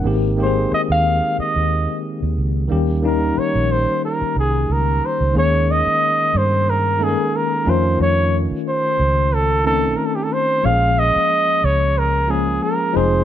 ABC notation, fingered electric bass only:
X:1
M:4/4
L:1/16
Q:"Swing 16ths" 1/4=91
K:Ebmix
V:1 name="Fingered electric bass" clef=bass
A,,,4 z E,,2 z2 E,,2 z2 E,, D,,2 | E,,4 z B,,,2 z3 C,,2 D,,2 z D,, | E,,3 z3 G,,4- G,, z3 F,,2 | F,,3 z3 D,,6 z4 |
B,,,3 z3 D,,6 z2 F,,,2 |]